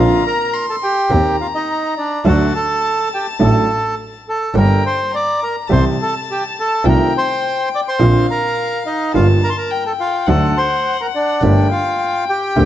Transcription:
0.00 0.20 A#1 medium
0.00 0.20 A#2 medium
0.00 0.19 D3 medium
0.00 0.20 A#3 medium
0.00 0.20 C4 medium
0.00 0.20 F4 medium
0.00 0.24 F4 medium
0.00 0.24 F5 medium
0.00 0.55 A#5 loud
0.26 0.66 A#4 medium
0.26 0.66 A#5 medium
0.53 1.13 C6 medium
0.70 0.76 A4 medium
0.70 0.76 A5 medium
0.83 1.36 G4 medium
0.83 1.36 G5 medium
1.10 1.35 D#2 medium
1.10 1.35 D#3 medium
1.10 1.35 A#3 medium
1.10 1.35 C4 medium
1.10 1.35 G4 medium
1.10 2.25 A#5 medium
1.41 1.47 F4 medium
1.41 1.47 F5 medium
1.54 1.95 D#4 medium
1.54 1.94 D#5 medium
1.98 2.25 D4 medium
1.98 2.24 D5 medium
2.24 2.50 D2 medium
2.24 2.49 D3 medium
2.24 2.49 F#3 medium
2.24 2.49 A3 medium
2.24 2.49 D4 medium
2.24 2.50 A4 medium
2.24 2.53 F#5 medium
2.24 4.23 A5 medium
2.28 2.54 F#4 medium
2.55 3.09 A4 medium
2.55 3.08 A5 medium
3.14 3.27 G4 medium
3.14 3.26 G5 medium
3.39 3.64 A1 medium
3.39 3.65 A1 medium
3.39 3.64 A2 medium
3.39 3.64 F#3 medium
3.39 3.64 A3 medium
3.39 3.64 D4 medium
3.39 3.65 A4 medium
3.39 3.95 A4 medium
3.39 3.95 A5 medium
4.28 4.54 A4 medium
4.28 4.55 A5 medium
4.54 4.79 G1 medium
4.54 4.79 G2 medium
4.54 4.79 G3 medium
4.54 4.79 A#3 medium
4.54 4.79 D4 medium
4.54 4.80 A4 medium
4.54 4.83 A#4 medium
4.54 5.08 G5 medium
4.59 4.84 A#5 medium
4.86 5.12 C5 medium
4.86 5.15 C6 medium
5.13 5.40 D5 medium
5.13 5.69 A#5 medium
5.13 5.44 D6 medium
5.43 5.56 A#4 medium
5.43 5.56 A#5 medium
5.67 5.94 C2 medium
5.67 5.94 C3 medium
5.67 5.94 E3 medium
5.67 5.94 G3 medium
5.67 5.94 C4 medium
5.67 5.94 G4 medium
5.67 6.86 A5 medium
5.72 5.84 C5 medium
5.72 5.85 C6 medium
6.02 6.14 A4 medium
6.02 6.15 A5 medium
6.31 6.43 G4 medium
6.31 6.44 G5 medium
6.60 6.85 A4 medium
6.60 6.85 A5 medium
6.84 7.09 C2 medium
6.84 7.09 C3 medium
6.84 7.09 D#3 medium
6.84 7.09 A3 medium
6.84 7.09 C4 medium
6.84 7.09 F4 medium
6.84 8.00 G5 medium
6.88 7.13 A#4 medium
6.88 7.13 A#5 medium
7.17 7.69 C5 medium
7.17 7.69 C6 medium
7.75 7.81 D5 medium
7.75 7.81 D6 medium
7.88 8.27 C5 medium
7.88 8.27 C6 medium
7.98 8.23 A#1 medium
7.98 8.24 A#1 medium
7.98 8.23 A#2 medium
7.98 8.23 D3 medium
7.98 8.23 A#3 medium
7.98 8.23 C4 medium
7.98 8.23 F4 medium
7.98 9.13 F5 medium
8.31 8.83 A#4 medium
8.31 8.83 A#5 medium
8.86 9.12 D#4 medium
8.86 9.12 D#5 medium
9.14 9.38 G1 medium
9.14 9.38 G2 medium
9.14 9.38 D3 medium
9.14 9.38 G3 medium
9.14 9.38 A#3 medium
9.14 9.38 F4 medium
9.14 9.28 F4 medium
9.14 9.27 F5 medium
9.14 9.72 A5 medium
9.43 9.50 A#4 medium
9.43 9.49 A#5 medium
9.50 9.56 C6 medium
9.58 9.84 A#4 medium
9.58 9.84 A#5 medium
9.71 10.28 G5 medium
9.86 9.92 A4 medium
9.86 9.92 A5 medium
10.00 10.26 F4 medium
10.00 10.29 F5 medium
10.26 10.52 D2 medium
10.26 10.52 D3 medium
10.26 10.52 F#3 medium
10.26 10.52 A3 medium
10.26 10.52 F#4 medium
10.26 10.55 A4 medium
10.26 11.44 F#5 medium
10.26 10.58 A5 medium
10.57 10.97 C5 medium
10.57 11.01 C6 medium
11.01 11.07 A#4 medium
11.01 11.07 A#5 medium
11.15 11.68 D4 medium
11.15 11.68 D5 medium
11.42 11.66 G1 medium
11.42 11.67 G1 medium
11.42 11.67 G2 medium
11.42 11.66 D3 medium
11.42 11.67 A3 medium
11.42 11.67 A#3 medium
11.42 11.67 G4 medium
11.42 12.65 G5 medium
11.71 12.25 F4 medium
11.71 12.24 F5 medium
12.29 12.65 G4 medium
12.29 12.65 G5 medium
12.56 12.65 D2 medium
12.56 12.65 D3 medium
12.56 12.65 A3 medium
12.56 12.65 A#3 medium
12.56 12.65 G4 medium

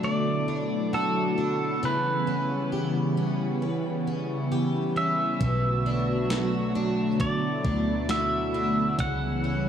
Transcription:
0.00 1.82 B2 medium
0.00 1.78 D3 medium
0.00 1.78 F#3 medium
0.00 1.78 A3 medium
0.00 1.91 A3 soft
0.00 8.95 B3 medium
0.00 0.47 D4 medium
0.00 5.37 E4 medium
0.00 0.92 F#4 medium
0.00 0.11 E5 medium
0.04 0.96 D5 medium
0.48 1.37 D4 soft
0.93 1.91 F#4 medium
0.93 1.86 A4 medium
1.38 1.91 D4 soft
1.83 5.37 C#3 medium
1.83 5.40 C#3 medium
1.83 5.37 E3 medium
1.83 5.37 G3 medium
1.83 2.69 B4 medium
2.27 3.16 C#4 soft
2.72 4.50 G4 soft
3.17 4.06 C#4 medium
3.62 7.12 B3 medium
4.07 4.95 C#4 soft
4.52 5.50 G4 medium
4.96 5.50 C#4 medium
4.96 7.27 E5 medium
5.40 7.61 B1 medium
5.40 8.99 B2 medium
5.40 8.95 D3 medium
5.40 8.95 F#3 medium
5.40 8.95 A3 medium
5.40 7.18 F#4 medium
5.40 kick medium
5.40 closed hi-hat medium
5.86 6.74 D4 soft
6.30 8.09 F#4 medium
6.30 snare medium
6.30 closed hi-hat medium
6.75 7.64 D4 medium
7.19 9.08 A3 medium
7.19 8.97 E4 medium
7.19 8.12 D5 medium
7.19 kick medium
7.19 closed hi-hat medium
7.65 8.95 D2 medium
7.65 8.53 D4 soft
7.65 kick medium
8.09 9.08 F#4 medium
8.09 8.96 E5 medium
8.09 snare medium
8.09 closed hi-hat medium
8.54 9.08 D4 medium
8.99 9.69 C#2 medium
8.99 9.69 C#3 medium
8.99 9.69 E3 medium
8.99 9.69 G3 medium
8.99 9.69 B3 medium
8.99 9.69 E4 medium
8.99 9.69 F#5 medium
8.99 kick medium
8.99 closed hi-hat medium
9.44 9.69 C#4 soft

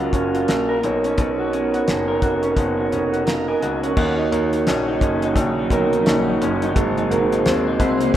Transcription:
0.00 3.28 F#3 medium
0.00 0.48 A#3 medium
0.00 0.13 C#4 medium
0.00 0.78 C#4 medium
0.00 0.33 F4 medium
0.00 0.79 F#4 medium
0.00 0.68 A#4 medium
0.00 0.80 A#4 medium
0.00 0.81 F5 medium
0.00 closed hi-hat soft
0.13 0.41 F#1 medium
0.13 1.04 C#4 medium
0.13 kick medium
0.13 closed hi-hat medium
0.34 0.92 F4 medium
0.34 closed hi-hat medium
0.48 0.76 A#1 medium
0.48 1.21 A#3 medium
0.48 snare medium
0.48 closed hi-hat medium
0.69 1.21 A#4 medium
0.80 1.11 B1 medium
0.80 1.17 B2 medium
0.80 3.91 B3 medium
0.80 3.92 D#4 medium
0.80 3.93 A#4 medium
0.80 closed hi-hat medium
0.85 3.24 C#5 medium
1.04 1.52 C#4 medium
1.04 closed hi-hat soft
1.18 1.74 B1 medium
1.18 2.55 B2 medium
1.18 kick loud
1.18 closed hi-hat medium
1.39 1.73 F#4 medium
1.53 2.43 C#4 medium
1.53 closed hi-hat medium
1.74 2.22 F#4 medium
1.74 closed hi-hat soft
1.88 2.16 F#1 medium
1.88 3.26 A#3 medium
1.88 snare medium
1.88 closed hi-hat medium
2.08 3.48 A#4 medium
2.22 2.50 F1 medium
2.22 2.77 F#4 medium
2.22 kick medium
2.22 closed hi-hat medium
2.43 2.91 C#4 medium
2.43 closed hi-hat soft
2.56 2.85 F#1 medium
2.56 4.05 B2 medium
2.56 kick medium
2.56 closed hi-hat medium
2.77 3.12 F#4 medium
2.92 3.48 F1 medium
2.92 3.83 C#4 medium
2.92 closed hi-hat medium
3.12 3.62 F#4 soft
3.12 closed hi-hat medium
3.26 6.76 A#3 medium
3.26 3.48 F5 soft
3.26 3.47 A#5 medium
3.26 snare loud
3.26 closed hi-hat medium
3.48 4.31 A#4 medium
3.48 3.81 D#5 soft
3.48 3.81 G#5 medium
3.62 3.90 C#2 medium
3.62 4.17 F#4 medium
3.62 closed hi-hat medium
3.83 4.21 C#4 medium
3.83 3.99 C#5 soft
3.83 4.16 F#5 medium
3.83 closed hi-hat soft
3.94 4.25 D#2 loud
3.94 6.72 C#3 medium
3.94 5.36 D#3 medium
3.94 6.73 F#3 medium
3.94 6.70 A#3 medium
3.94 6.71 D#4 medium
3.94 6.73 D#4 medium
3.94 6.72 F#4 medium
3.94 kick loud
3.94 crash medium
4.00 6.73 C#5 medium
4.18 4.53 D#4 medium
4.32 4.60 D#2 medium
4.32 5.72 A#4 medium
4.32 closed hi-hat medium
4.53 4.88 D#4 medium
4.53 closed hi-hat medium
4.67 4.95 A#1 medium
4.67 5.01 C#4 medium
4.67 snare medium
4.67 closed hi-hat medium
4.88 5.23 D#4 medium
5.01 5.29 F#1 medium
5.01 6.05 C#4 medium
5.01 kick medium
5.01 closed hi-hat medium
5.22 5.58 D#4 medium
5.22 closed hi-hat soft
5.36 5.64 A#1 medium
5.36 8.17 D#3 medium
5.36 kick medium
5.36 closed hi-hat medium
5.59 5.92 D#4 medium
5.70 5.99 B1 loud
5.70 7.11 A#4 medium
5.70 kick medium
5.70 closed hi-hat medium
5.93 6.27 D#4 medium
5.93 closed hi-hat medium
6.06 6.34 A#1 medium
6.06 6.41 C#4 medium
6.06 snare loud
6.06 closed hi-hat medium
6.27 6.62 D#4 medium
6.41 6.69 F#1 medium
6.41 6.85 C#4 medium
6.41 closed hi-hat medium
6.62 6.98 D#4 medium
6.62 closed hi-hat medium
6.73 7.04 G#1 loud
6.73 8.14 G#2 medium
6.73 8.17 C3 medium
6.73 8.17 A#3 medium
6.73 8.17 F#4 medium
6.73 8.17 G#4 medium
6.73 kick loud
6.73 closed hi-hat medium
6.78 8.17 C5 medium
6.98 7.32 D#4 medium
6.98 closed hi-hat soft
7.10 7.38 G#1 medium
7.10 8.17 A#4 medium
7.10 closed hi-hat medium
7.32 7.66 D#4 medium
7.32 closed hi-hat medium
7.45 7.73 D#2 medium
7.45 7.79 C4 medium
7.45 snare loud
7.45 closed hi-hat medium
7.68 8.00 D#4 medium
7.80 8.08 C2 medium
7.80 8.17 C4 medium
7.80 8.12 C6 medium
7.80 kick medium
7.80 closed hi-hat medium
8.01 8.17 D#4 medium
8.01 closed hi-hat medium
8.14 8.17 D#2 medium

